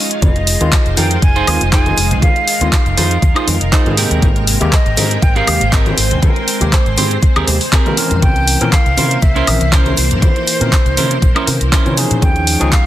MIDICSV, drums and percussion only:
0, 0, Header, 1, 2, 480
1, 0, Start_track
1, 0, Key_signature, -4, "minor"
1, 0, Tempo, 500000
1, 216, Time_signature, 4, 2, 24, 8
1, 12348, End_track
2, 0, Start_track
2, 0, Title_t, "Drums"
2, 104, Note_on_c, 9, 42, 55
2, 200, Note_off_c, 9, 42, 0
2, 211, Note_on_c, 9, 69, 55
2, 214, Note_on_c, 9, 36, 119
2, 214, Note_on_c, 9, 42, 55
2, 216, Note_on_c, 9, 63, 95
2, 307, Note_off_c, 9, 69, 0
2, 310, Note_off_c, 9, 36, 0
2, 310, Note_off_c, 9, 42, 0
2, 312, Note_off_c, 9, 63, 0
2, 344, Note_on_c, 9, 42, 28
2, 344, Note_on_c, 9, 69, 26
2, 440, Note_off_c, 9, 42, 0
2, 440, Note_off_c, 9, 69, 0
2, 453, Note_on_c, 9, 46, 114
2, 456, Note_on_c, 9, 69, 106
2, 549, Note_off_c, 9, 46, 0
2, 552, Note_off_c, 9, 69, 0
2, 583, Note_on_c, 9, 42, 57
2, 586, Note_on_c, 9, 63, 61
2, 590, Note_on_c, 9, 69, 43
2, 679, Note_off_c, 9, 42, 0
2, 682, Note_off_c, 9, 63, 0
2, 686, Note_off_c, 9, 69, 0
2, 691, Note_on_c, 9, 69, 56
2, 693, Note_on_c, 9, 42, 57
2, 694, Note_on_c, 9, 36, 121
2, 695, Note_on_c, 9, 39, 127
2, 787, Note_off_c, 9, 69, 0
2, 789, Note_off_c, 9, 42, 0
2, 790, Note_off_c, 9, 36, 0
2, 791, Note_off_c, 9, 39, 0
2, 824, Note_on_c, 9, 42, 28
2, 830, Note_on_c, 9, 69, 26
2, 920, Note_off_c, 9, 42, 0
2, 926, Note_off_c, 9, 69, 0
2, 931, Note_on_c, 9, 69, 89
2, 933, Note_on_c, 9, 46, 106
2, 940, Note_on_c, 9, 63, 97
2, 1027, Note_off_c, 9, 69, 0
2, 1029, Note_off_c, 9, 46, 0
2, 1036, Note_off_c, 9, 63, 0
2, 1064, Note_on_c, 9, 42, 55
2, 1067, Note_on_c, 9, 69, 45
2, 1160, Note_off_c, 9, 42, 0
2, 1163, Note_off_c, 9, 69, 0
2, 1175, Note_on_c, 9, 36, 122
2, 1176, Note_on_c, 9, 42, 57
2, 1179, Note_on_c, 9, 69, 51
2, 1271, Note_off_c, 9, 36, 0
2, 1272, Note_off_c, 9, 42, 0
2, 1275, Note_off_c, 9, 69, 0
2, 1306, Note_on_c, 9, 42, 28
2, 1310, Note_on_c, 9, 69, 29
2, 1402, Note_off_c, 9, 42, 0
2, 1406, Note_off_c, 9, 69, 0
2, 1415, Note_on_c, 9, 46, 107
2, 1415, Note_on_c, 9, 63, 58
2, 1415, Note_on_c, 9, 76, 59
2, 1421, Note_on_c, 9, 69, 87
2, 1511, Note_off_c, 9, 46, 0
2, 1511, Note_off_c, 9, 63, 0
2, 1511, Note_off_c, 9, 76, 0
2, 1517, Note_off_c, 9, 69, 0
2, 1539, Note_on_c, 9, 69, 46
2, 1546, Note_on_c, 9, 42, 54
2, 1635, Note_off_c, 9, 69, 0
2, 1642, Note_off_c, 9, 42, 0
2, 1655, Note_on_c, 9, 36, 120
2, 1656, Note_on_c, 9, 42, 57
2, 1658, Note_on_c, 9, 39, 124
2, 1658, Note_on_c, 9, 69, 55
2, 1751, Note_off_c, 9, 36, 0
2, 1752, Note_off_c, 9, 42, 0
2, 1754, Note_off_c, 9, 39, 0
2, 1754, Note_off_c, 9, 69, 0
2, 1787, Note_on_c, 9, 42, 28
2, 1788, Note_on_c, 9, 63, 92
2, 1790, Note_on_c, 9, 69, 31
2, 1883, Note_off_c, 9, 42, 0
2, 1884, Note_off_c, 9, 63, 0
2, 1886, Note_off_c, 9, 69, 0
2, 1889, Note_on_c, 9, 69, 95
2, 1897, Note_on_c, 9, 46, 110
2, 1985, Note_off_c, 9, 69, 0
2, 1993, Note_off_c, 9, 46, 0
2, 2025, Note_on_c, 9, 69, 44
2, 2026, Note_on_c, 9, 64, 83
2, 2027, Note_on_c, 9, 42, 54
2, 2121, Note_off_c, 9, 69, 0
2, 2122, Note_off_c, 9, 64, 0
2, 2123, Note_off_c, 9, 42, 0
2, 2133, Note_on_c, 9, 69, 50
2, 2135, Note_on_c, 9, 36, 123
2, 2137, Note_on_c, 9, 42, 52
2, 2140, Note_on_c, 9, 63, 92
2, 2229, Note_off_c, 9, 69, 0
2, 2231, Note_off_c, 9, 36, 0
2, 2233, Note_off_c, 9, 42, 0
2, 2236, Note_off_c, 9, 63, 0
2, 2266, Note_on_c, 9, 42, 28
2, 2267, Note_on_c, 9, 69, 27
2, 2362, Note_off_c, 9, 42, 0
2, 2363, Note_off_c, 9, 69, 0
2, 2376, Note_on_c, 9, 46, 115
2, 2378, Note_on_c, 9, 69, 84
2, 2472, Note_off_c, 9, 46, 0
2, 2474, Note_off_c, 9, 69, 0
2, 2506, Note_on_c, 9, 42, 54
2, 2507, Note_on_c, 9, 63, 71
2, 2508, Note_on_c, 9, 69, 37
2, 2602, Note_off_c, 9, 42, 0
2, 2603, Note_off_c, 9, 63, 0
2, 2604, Note_off_c, 9, 69, 0
2, 2614, Note_on_c, 9, 36, 127
2, 2616, Note_on_c, 9, 42, 56
2, 2618, Note_on_c, 9, 39, 127
2, 2618, Note_on_c, 9, 69, 54
2, 2710, Note_off_c, 9, 36, 0
2, 2712, Note_off_c, 9, 42, 0
2, 2714, Note_off_c, 9, 39, 0
2, 2714, Note_off_c, 9, 69, 0
2, 2746, Note_on_c, 9, 42, 28
2, 2753, Note_on_c, 9, 69, 28
2, 2842, Note_off_c, 9, 42, 0
2, 2849, Note_off_c, 9, 69, 0
2, 2855, Note_on_c, 9, 63, 105
2, 2856, Note_on_c, 9, 46, 109
2, 2861, Note_on_c, 9, 69, 89
2, 2951, Note_off_c, 9, 63, 0
2, 2952, Note_off_c, 9, 46, 0
2, 2957, Note_off_c, 9, 69, 0
2, 2986, Note_on_c, 9, 42, 53
2, 2987, Note_on_c, 9, 69, 43
2, 3082, Note_off_c, 9, 42, 0
2, 3083, Note_off_c, 9, 69, 0
2, 3095, Note_on_c, 9, 36, 124
2, 3098, Note_on_c, 9, 42, 53
2, 3103, Note_on_c, 9, 69, 58
2, 3191, Note_off_c, 9, 36, 0
2, 3194, Note_off_c, 9, 42, 0
2, 3199, Note_off_c, 9, 69, 0
2, 3227, Note_on_c, 9, 42, 27
2, 3227, Note_on_c, 9, 76, 60
2, 3231, Note_on_c, 9, 69, 26
2, 3323, Note_off_c, 9, 42, 0
2, 3323, Note_off_c, 9, 76, 0
2, 3327, Note_off_c, 9, 69, 0
2, 3335, Note_on_c, 9, 63, 67
2, 3337, Note_on_c, 9, 46, 107
2, 3342, Note_on_c, 9, 69, 89
2, 3431, Note_off_c, 9, 63, 0
2, 3433, Note_off_c, 9, 46, 0
2, 3438, Note_off_c, 9, 69, 0
2, 3466, Note_on_c, 9, 42, 53
2, 3469, Note_on_c, 9, 69, 38
2, 3562, Note_off_c, 9, 42, 0
2, 3565, Note_off_c, 9, 69, 0
2, 3575, Note_on_c, 9, 36, 122
2, 3577, Note_on_c, 9, 42, 54
2, 3577, Note_on_c, 9, 69, 62
2, 3579, Note_on_c, 9, 39, 127
2, 3671, Note_off_c, 9, 36, 0
2, 3673, Note_off_c, 9, 42, 0
2, 3673, Note_off_c, 9, 69, 0
2, 3675, Note_off_c, 9, 39, 0
2, 3704, Note_on_c, 9, 69, 27
2, 3707, Note_on_c, 9, 42, 28
2, 3709, Note_on_c, 9, 63, 103
2, 3800, Note_off_c, 9, 69, 0
2, 3803, Note_off_c, 9, 42, 0
2, 3805, Note_off_c, 9, 63, 0
2, 3815, Note_on_c, 9, 46, 111
2, 3820, Note_on_c, 9, 69, 99
2, 3911, Note_off_c, 9, 46, 0
2, 3916, Note_off_c, 9, 69, 0
2, 3946, Note_on_c, 9, 42, 52
2, 3948, Note_on_c, 9, 64, 77
2, 3949, Note_on_c, 9, 69, 43
2, 4042, Note_off_c, 9, 42, 0
2, 4044, Note_off_c, 9, 64, 0
2, 4045, Note_off_c, 9, 69, 0
2, 4054, Note_on_c, 9, 69, 54
2, 4055, Note_on_c, 9, 36, 127
2, 4056, Note_on_c, 9, 42, 51
2, 4059, Note_on_c, 9, 63, 99
2, 4150, Note_off_c, 9, 69, 0
2, 4151, Note_off_c, 9, 36, 0
2, 4152, Note_off_c, 9, 42, 0
2, 4155, Note_off_c, 9, 63, 0
2, 4186, Note_on_c, 9, 42, 27
2, 4190, Note_on_c, 9, 69, 24
2, 4282, Note_off_c, 9, 42, 0
2, 4286, Note_off_c, 9, 69, 0
2, 4295, Note_on_c, 9, 46, 119
2, 4296, Note_on_c, 9, 69, 88
2, 4391, Note_off_c, 9, 46, 0
2, 4392, Note_off_c, 9, 69, 0
2, 4425, Note_on_c, 9, 42, 51
2, 4425, Note_on_c, 9, 69, 42
2, 4428, Note_on_c, 9, 63, 67
2, 4521, Note_off_c, 9, 42, 0
2, 4521, Note_off_c, 9, 69, 0
2, 4524, Note_off_c, 9, 63, 0
2, 4535, Note_on_c, 9, 36, 124
2, 4535, Note_on_c, 9, 42, 52
2, 4537, Note_on_c, 9, 39, 120
2, 4539, Note_on_c, 9, 69, 51
2, 4631, Note_off_c, 9, 36, 0
2, 4631, Note_off_c, 9, 42, 0
2, 4633, Note_off_c, 9, 39, 0
2, 4635, Note_off_c, 9, 69, 0
2, 4666, Note_on_c, 9, 42, 27
2, 4667, Note_on_c, 9, 69, 25
2, 4762, Note_off_c, 9, 42, 0
2, 4763, Note_off_c, 9, 69, 0
2, 4769, Note_on_c, 9, 69, 89
2, 4774, Note_on_c, 9, 63, 106
2, 4775, Note_on_c, 9, 46, 116
2, 4865, Note_off_c, 9, 69, 0
2, 4870, Note_off_c, 9, 63, 0
2, 4871, Note_off_c, 9, 46, 0
2, 4903, Note_on_c, 9, 69, 36
2, 4907, Note_on_c, 9, 42, 52
2, 4999, Note_off_c, 9, 69, 0
2, 5003, Note_off_c, 9, 42, 0
2, 5015, Note_on_c, 9, 36, 127
2, 5015, Note_on_c, 9, 69, 55
2, 5016, Note_on_c, 9, 42, 51
2, 5111, Note_off_c, 9, 36, 0
2, 5111, Note_off_c, 9, 69, 0
2, 5112, Note_off_c, 9, 42, 0
2, 5142, Note_on_c, 9, 69, 27
2, 5146, Note_on_c, 9, 42, 25
2, 5238, Note_off_c, 9, 69, 0
2, 5242, Note_off_c, 9, 42, 0
2, 5256, Note_on_c, 9, 46, 110
2, 5256, Note_on_c, 9, 63, 61
2, 5256, Note_on_c, 9, 76, 59
2, 5259, Note_on_c, 9, 69, 77
2, 5352, Note_off_c, 9, 46, 0
2, 5352, Note_off_c, 9, 63, 0
2, 5352, Note_off_c, 9, 76, 0
2, 5355, Note_off_c, 9, 69, 0
2, 5387, Note_on_c, 9, 42, 50
2, 5387, Note_on_c, 9, 69, 41
2, 5483, Note_off_c, 9, 42, 0
2, 5483, Note_off_c, 9, 69, 0
2, 5496, Note_on_c, 9, 36, 122
2, 5497, Note_on_c, 9, 42, 51
2, 5497, Note_on_c, 9, 69, 51
2, 5499, Note_on_c, 9, 39, 123
2, 5592, Note_off_c, 9, 36, 0
2, 5593, Note_off_c, 9, 42, 0
2, 5593, Note_off_c, 9, 69, 0
2, 5595, Note_off_c, 9, 39, 0
2, 5626, Note_on_c, 9, 42, 26
2, 5627, Note_on_c, 9, 63, 107
2, 5628, Note_on_c, 9, 69, 25
2, 5722, Note_off_c, 9, 42, 0
2, 5723, Note_off_c, 9, 63, 0
2, 5724, Note_off_c, 9, 69, 0
2, 5734, Note_on_c, 9, 69, 82
2, 5737, Note_on_c, 9, 46, 112
2, 5830, Note_off_c, 9, 69, 0
2, 5833, Note_off_c, 9, 46, 0
2, 5866, Note_on_c, 9, 42, 50
2, 5866, Note_on_c, 9, 64, 85
2, 5872, Note_on_c, 9, 69, 36
2, 5962, Note_off_c, 9, 42, 0
2, 5962, Note_off_c, 9, 64, 0
2, 5968, Note_off_c, 9, 69, 0
2, 5974, Note_on_c, 9, 69, 48
2, 5976, Note_on_c, 9, 36, 124
2, 5977, Note_on_c, 9, 42, 50
2, 5979, Note_on_c, 9, 63, 93
2, 6070, Note_off_c, 9, 69, 0
2, 6072, Note_off_c, 9, 36, 0
2, 6073, Note_off_c, 9, 42, 0
2, 6075, Note_off_c, 9, 63, 0
2, 6108, Note_on_c, 9, 42, 25
2, 6108, Note_on_c, 9, 69, 21
2, 6204, Note_off_c, 9, 42, 0
2, 6204, Note_off_c, 9, 69, 0
2, 6218, Note_on_c, 9, 46, 114
2, 6218, Note_on_c, 9, 69, 80
2, 6314, Note_off_c, 9, 46, 0
2, 6314, Note_off_c, 9, 69, 0
2, 6346, Note_on_c, 9, 42, 52
2, 6348, Note_on_c, 9, 69, 40
2, 6349, Note_on_c, 9, 63, 67
2, 6442, Note_off_c, 9, 42, 0
2, 6444, Note_off_c, 9, 69, 0
2, 6445, Note_off_c, 9, 63, 0
2, 6453, Note_on_c, 9, 69, 49
2, 6456, Note_on_c, 9, 36, 127
2, 6457, Note_on_c, 9, 42, 52
2, 6459, Note_on_c, 9, 39, 121
2, 6549, Note_off_c, 9, 69, 0
2, 6552, Note_off_c, 9, 36, 0
2, 6553, Note_off_c, 9, 42, 0
2, 6555, Note_off_c, 9, 39, 0
2, 6587, Note_on_c, 9, 42, 25
2, 6591, Note_on_c, 9, 69, 27
2, 6683, Note_off_c, 9, 42, 0
2, 6687, Note_off_c, 9, 69, 0
2, 6690, Note_on_c, 9, 69, 90
2, 6694, Note_on_c, 9, 63, 100
2, 6697, Note_on_c, 9, 46, 112
2, 6786, Note_off_c, 9, 69, 0
2, 6790, Note_off_c, 9, 63, 0
2, 6793, Note_off_c, 9, 46, 0
2, 6821, Note_on_c, 9, 69, 40
2, 6827, Note_on_c, 9, 42, 53
2, 6917, Note_off_c, 9, 69, 0
2, 6923, Note_off_c, 9, 42, 0
2, 6930, Note_on_c, 9, 69, 46
2, 6936, Note_on_c, 9, 36, 118
2, 6938, Note_on_c, 9, 42, 53
2, 7026, Note_off_c, 9, 69, 0
2, 7032, Note_off_c, 9, 36, 0
2, 7034, Note_off_c, 9, 42, 0
2, 7062, Note_on_c, 9, 69, 23
2, 7067, Note_on_c, 9, 42, 26
2, 7067, Note_on_c, 9, 76, 62
2, 7158, Note_off_c, 9, 69, 0
2, 7163, Note_off_c, 9, 42, 0
2, 7163, Note_off_c, 9, 76, 0
2, 7170, Note_on_c, 9, 63, 61
2, 7176, Note_on_c, 9, 46, 107
2, 7183, Note_on_c, 9, 69, 79
2, 7266, Note_off_c, 9, 63, 0
2, 7272, Note_off_c, 9, 46, 0
2, 7279, Note_off_c, 9, 69, 0
2, 7305, Note_on_c, 9, 46, 61
2, 7311, Note_on_c, 9, 69, 38
2, 7401, Note_off_c, 9, 46, 0
2, 7407, Note_off_c, 9, 69, 0
2, 7415, Note_on_c, 9, 42, 52
2, 7416, Note_on_c, 9, 36, 119
2, 7417, Note_on_c, 9, 39, 115
2, 7417, Note_on_c, 9, 69, 50
2, 7511, Note_off_c, 9, 42, 0
2, 7512, Note_off_c, 9, 36, 0
2, 7513, Note_off_c, 9, 39, 0
2, 7513, Note_off_c, 9, 69, 0
2, 7546, Note_on_c, 9, 42, 26
2, 7550, Note_on_c, 9, 69, 26
2, 7552, Note_on_c, 9, 63, 103
2, 7642, Note_off_c, 9, 42, 0
2, 7646, Note_off_c, 9, 69, 0
2, 7648, Note_off_c, 9, 63, 0
2, 7654, Note_on_c, 9, 46, 111
2, 7670, Note_on_c, 9, 69, 84
2, 7750, Note_off_c, 9, 46, 0
2, 7766, Note_off_c, 9, 69, 0
2, 7784, Note_on_c, 9, 42, 49
2, 7787, Note_on_c, 9, 69, 34
2, 7797, Note_on_c, 9, 64, 76
2, 7880, Note_off_c, 9, 42, 0
2, 7883, Note_off_c, 9, 69, 0
2, 7893, Note_off_c, 9, 64, 0
2, 7895, Note_on_c, 9, 42, 51
2, 7896, Note_on_c, 9, 36, 120
2, 7896, Note_on_c, 9, 63, 85
2, 7896, Note_on_c, 9, 69, 49
2, 7991, Note_off_c, 9, 42, 0
2, 7992, Note_off_c, 9, 36, 0
2, 7992, Note_off_c, 9, 63, 0
2, 7992, Note_off_c, 9, 69, 0
2, 8025, Note_on_c, 9, 42, 26
2, 8029, Note_on_c, 9, 69, 22
2, 8121, Note_off_c, 9, 42, 0
2, 8125, Note_off_c, 9, 69, 0
2, 8135, Note_on_c, 9, 69, 90
2, 8136, Note_on_c, 9, 46, 114
2, 8231, Note_off_c, 9, 69, 0
2, 8232, Note_off_c, 9, 46, 0
2, 8265, Note_on_c, 9, 42, 52
2, 8270, Note_on_c, 9, 69, 36
2, 8272, Note_on_c, 9, 63, 65
2, 8361, Note_off_c, 9, 42, 0
2, 8366, Note_off_c, 9, 69, 0
2, 8368, Note_off_c, 9, 63, 0
2, 8375, Note_on_c, 9, 36, 125
2, 8376, Note_on_c, 9, 42, 52
2, 8378, Note_on_c, 9, 39, 121
2, 8379, Note_on_c, 9, 69, 56
2, 8471, Note_off_c, 9, 36, 0
2, 8472, Note_off_c, 9, 42, 0
2, 8474, Note_off_c, 9, 39, 0
2, 8475, Note_off_c, 9, 69, 0
2, 8506, Note_on_c, 9, 42, 27
2, 8514, Note_on_c, 9, 69, 24
2, 8602, Note_off_c, 9, 42, 0
2, 8610, Note_off_c, 9, 69, 0
2, 8612, Note_on_c, 9, 69, 86
2, 8616, Note_on_c, 9, 63, 95
2, 8617, Note_on_c, 9, 46, 102
2, 8708, Note_off_c, 9, 69, 0
2, 8712, Note_off_c, 9, 63, 0
2, 8713, Note_off_c, 9, 46, 0
2, 8745, Note_on_c, 9, 69, 35
2, 8747, Note_on_c, 9, 42, 52
2, 8841, Note_off_c, 9, 69, 0
2, 8843, Note_off_c, 9, 42, 0
2, 8848, Note_on_c, 9, 69, 53
2, 8855, Note_on_c, 9, 36, 115
2, 8855, Note_on_c, 9, 42, 53
2, 8944, Note_off_c, 9, 69, 0
2, 8951, Note_off_c, 9, 36, 0
2, 8951, Note_off_c, 9, 42, 0
2, 8983, Note_on_c, 9, 69, 24
2, 8986, Note_on_c, 9, 42, 25
2, 9079, Note_off_c, 9, 69, 0
2, 9082, Note_off_c, 9, 42, 0
2, 9095, Note_on_c, 9, 46, 105
2, 9095, Note_on_c, 9, 76, 61
2, 9097, Note_on_c, 9, 63, 56
2, 9098, Note_on_c, 9, 69, 78
2, 9191, Note_off_c, 9, 46, 0
2, 9191, Note_off_c, 9, 76, 0
2, 9193, Note_off_c, 9, 63, 0
2, 9194, Note_off_c, 9, 69, 0
2, 9225, Note_on_c, 9, 42, 51
2, 9229, Note_on_c, 9, 69, 37
2, 9321, Note_off_c, 9, 42, 0
2, 9325, Note_off_c, 9, 69, 0
2, 9334, Note_on_c, 9, 36, 113
2, 9335, Note_on_c, 9, 42, 50
2, 9337, Note_on_c, 9, 39, 115
2, 9338, Note_on_c, 9, 69, 54
2, 9430, Note_off_c, 9, 36, 0
2, 9431, Note_off_c, 9, 42, 0
2, 9433, Note_off_c, 9, 39, 0
2, 9434, Note_off_c, 9, 69, 0
2, 9462, Note_on_c, 9, 63, 91
2, 9466, Note_on_c, 9, 42, 26
2, 9468, Note_on_c, 9, 69, 26
2, 9558, Note_off_c, 9, 63, 0
2, 9562, Note_off_c, 9, 42, 0
2, 9564, Note_off_c, 9, 69, 0
2, 9570, Note_on_c, 9, 69, 95
2, 9575, Note_on_c, 9, 46, 105
2, 9666, Note_off_c, 9, 69, 0
2, 9671, Note_off_c, 9, 46, 0
2, 9706, Note_on_c, 9, 42, 50
2, 9708, Note_on_c, 9, 69, 39
2, 9718, Note_on_c, 9, 64, 78
2, 9802, Note_off_c, 9, 42, 0
2, 9804, Note_off_c, 9, 69, 0
2, 9812, Note_on_c, 9, 69, 49
2, 9814, Note_off_c, 9, 64, 0
2, 9814, Note_on_c, 9, 36, 118
2, 9816, Note_on_c, 9, 42, 52
2, 9818, Note_on_c, 9, 63, 97
2, 9908, Note_off_c, 9, 69, 0
2, 9910, Note_off_c, 9, 36, 0
2, 9912, Note_off_c, 9, 42, 0
2, 9914, Note_off_c, 9, 63, 0
2, 9943, Note_on_c, 9, 69, 23
2, 9946, Note_on_c, 9, 42, 27
2, 10039, Note_off_c, 9, 69, 0
2, 10042, Note_off_c, 9, 42, 0
2, 10050, Note_on_c, 9, 69, 93
2, 10056, Note_on_c, 9, 46, 104
2, 10146, Note_off_c, 9, 69, 0
2, 10152, Note_off_c, 9, 46, 0
2, 10186, Note_on_c, 9, 42, 54
2, 10186, Note_on_c, 9, 63, 65
2, 10189, Note_on_c, 9, 69, 36
2, 10282, Note_off_c, 9, 42, 0
2, 10282, Note_off_c, 9, 63, 0
2, 10285, Note_off_c, 9, 69, 0
2, 10294, Note_on_c, 9, 36, 118
2, 10294, Note_on_c, 9, 69, 54
2, 10296, Note_on_c, 9, 42, 54
2, 10298, Note_on_c, 9, 39, 112
2, 10390, Note_off_c, 9, 36, 0
2, 10390, Note_off_c, 9, 69, 0
2, 10392, Note_off_c, 9, 42, 0
2, 10394, Note_off_c, 9, 39, 0
2, 10426, Note_on_c, 9, 42, 28
2, 10431, Note_on_c, 9, 69, 28
2, 10522, Note_off_c, 9, 42, 0
2, 10527, Note_off_c, 9, 69, 0
2, 10533, Note_on_c, 9, 69, 93
2, 10534, Note_on_c, 9, 46, 102
2, 10546, Note_on_c, 9, 63, 89
2, 10629, Note_off_c, 9, 69, 0
2, 10630, Note_off_c, 9, 46, 0
2, 10642, Note_off_c, 9, 63, 0
2, 10665, Note_on_c, 9, 42, 54
2, 10666, Note_on_c, 9, 69, 39
2, 10761, Note_off_c, 9, 42, 0
2, 10762, Note_off_c, 9, 69, 0
2, 10774, Note_on_c, 9, 36, 114
2, 10775, Note_on_c, 9, 42, 55
2, 10780, Note_on_c, 9, 69, 47
2, 10870, Note_off_c, 9, 36, 0
2, 10871, Note_off_c, 9, 42, 0
2, 10876, Note_off_c, 9, 69, 0
2, 10905, Note_on_c, 9, 42, 26
2, 10905, Note_on_c, 9, 76, 66
2, 10907, Note_on_c, 9, 69, 25
2, 11001, Note_off_c, 9, 42, 0
2, 11001, Note_off_c, 9, 76, 0
2, 11003, Note_off_c, 9, 69, 0
2, 11015, Note_on_c, 9, 46, 100
2, 11017, Note_on_c, 9, 63, 57
2, 11021, Note_on_c, 9, 69, 93
2, 11111, Note_off_c, 9, 46, 0
2, 11113, Note_off_c, 9, 63, 0
2, 11117, Note_off_c, 9, 69, 0
2, 11142, Note_on_c, 9, 69, 41
2, 11145, Note_on_c, 9, 42, 51
2, 11238, Note_off_c, 9, 69, 0
2, 11241, Note_off_c, 9, 42, 0
2, 11254, Note_on_c, 9, 36, 111
2, 11256, Note_on_c, 9, 42, 54
2, 11258, Note_on_c, 9, 39, 113
2, 11260, Note_on_c, 9, 69, 53
2, 11350, Note_off_c, 9, 36, 0
2, 11352, Note_off_c, 9, 42, 0
2, 11354, Note_off_c, 9, 39, 0
2, 11356, Note_off_c, 9, 69, 0
2, 11386, Note_on_c, 9, 42, 27
2, 11386, Note_on_c, 9, 63, 91
2, 11393, Note_on_c, 9, 69, 28
2, 11482, Note_off_c, 9, 42, 0
2, 11482, Note_off_c, 9, 63, 0
2, 11489, Note_off_c, 9, 69, 0
2, 11493, Note_on_c, 9, 69, 102
2, 11495, Note_on_c, 9, 46, 105
2, 11589, Note_off_c, 9, 69, 0
2, 11591, Note_off_c, 9, 46, 0
2, 11625, Note_on_c, 9, 42, 51
2, 11625, Note_on_c, 9, 69, 37
2, 11626, Note_on_c, 9, 64, 76
2, 11721, Note_off_c, 9, 42, 0
2, 11721, Note_off_c, 9, 69, 0
2, 11722, Note_off_c, 9, 64, 0
2, 11734, Note_on_c, 9, 36, 114
2, 11734, Note_on_c, 9, 69, 58
2, 11735, Note_on_c, 9, 42, 54
2, 11739, Note_on_c, 9, 63, 89
2, 11830, Note_off_c, 9, 36, 0
2, 11830, Note_off_c, 9, 69, 0
2, 11831, Note_off_c, 9, 42, 0
2, 11835, Note_off_c, 9, 63, 0
2, 11864, Note_on_c, 9, 42, 28
2, 11864, Note_on_c, 9, 69, 29
2, 11960, Note_off_c, 9, 42, 0
2, 11960, Note_off_c, 9, 69, 0
2, 11973, Note_on_c, 9, 46, 107
2, 11976, Note_on_c, 9, 69, 90
2, 12069, Note_off_c, 9, 46, 0
2, 12072, Note_off_c, 9, 69, 0
2, 12104, Note_on_c, 9, 42, 56
2, 12111, Note_on_c, 9, 69, 42
2, 12113, Note_on_c, 9, 63, 58
2, 12200, Note_off_c, 9, 42, 0
2, 12207, Note_off_c, 9, 69, 0
2, 12209, Note_off_c, 9, 63, 0
2, 12213, Note_on_c, 9, 42, 56
2, 12214, Note_on_c, 9, 36, 120
2, 12215, Note_on_c, 9, 39, 123
2, 12218, Note_on_c, 9, 69, 53
2, 12309, Note_off_c, 9, 42, 0
2, 12310, Note_off_c, 9, 36, 0
2, 12311, Note_off_c, 9, 39, 0
2, 12314, Note_off_c, 9, 69, 0
2, 12348, End_track
0, 0, End_of_file